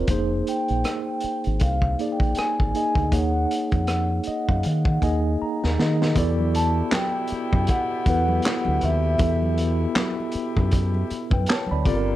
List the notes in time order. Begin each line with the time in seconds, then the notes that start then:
Already playing: C4 F4
0.08 F1 A#3 D#4 G#4 C5, kick, closed hi-hat
0.47 G5, closed hi-hat
0.68 A#1, closed hi-hat
0.84 cross-stick, closed hi-hat
1.20 muted fingered electric bass stroke, closed hi-hat
1.44 G#1, closed hi-hat
1.60 C2 F5, kick, closed hi-hat
1.82 kick
1.99 A#3 D#4 G#4 D5, closed hi-hat
2.12 G5
2.20 A#1, kick, closed hi-hat
2.35 G#5, cross-stick, closed hi-hat
2.60 G#1, kick
2.74 A#3 D#4 G#4 D#5, closed hi-hat
2.95 D2, kick, closed hi-hat
3.12 D#2 A#3 D#4 G#4 C#5 F#5, kick, closed hi-hat
3.51 closed hi-hat
3.71 F2, kick, closed hi-hat
3.87 cross-stick, closed hi-hat
4.23 closed hi-hat
4.28 D#5, muted fingered electric bass stroke
4.49 F#2 F5, kick
4.63 D#3 F#5, closed hi-hat
4.85 kick
5.02 D#2 A#3 D#4 G#4 D#5 G#5, kick, closed hi-hat
5.42 A#5, muted fingered electric bass stroke
5.64 D#2, snare
5.79 D#3 A#3 D#4 G#4 D#5, snare
6.02 snare
6.15 E2 B2 B3 E4 G4 A4 D5, kick, closed hi-hat, low conga
6.39 muted conga, high conga
6.55 A5, closed hi-hat
6.91 G5, snare, clap, closed hi-hat, muted conga, high conga
7.27 closed hi-hat
7.32 muted fingered electric bass stroke
7.53 F#2, kick, low conga
7.67 F#5, kick, closed hi-hat, muted conga
8.06 E2 B3 E4 A4 B4 F#5, kick, closed hi-hat
8.28 high conga
8.42 snare, clap, closed hi-hat
8.65 D2, high conga
8.81 D#2 E5, closed hi-hat, low conga
9.18 E2 B3 E4 A4 E5, kick, closed hi-hat, muted conga, low conga
9.42 muted conga, high conga
9.58 closed hi-hat
9.95 snare, clap, closed hi-hat, muted conga, high conga
10.20 muted conga
10.32 muted fingered electric bass stroke, closed hi-hat
10.57 F#2, kick, low conga
10.71 kick, closed hi-hat, muted conga
10.94 muted conga
11.10 muted fingered electric bass stroke, closed hi-hat
11.30 F#2 B4 G5, kick, high conga
11.46 C#5 A5, snare, clap, closed hi-hat, muted conga
11.67 high conga
11.71 D2 D5 B5
11.85 G1 D3 A#3 C4 F4 G4 A4 D5, kick, closed hi-hat, low conga
11.94 A#4